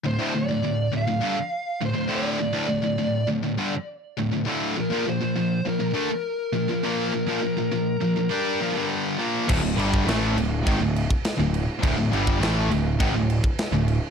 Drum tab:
CC |----------------|----------------|----------------|----------------|
SD |----------------|----------------|----------------|----------------|
BD |----------------|----------------|----------------|----------------|

CC |x-x-x-x-x-x-x-x-|x-x-x-x-x-x-x-x-|
SD |----o-------o---|----o-------o---|
BD |o--o----o--o----|o--o----o--o----|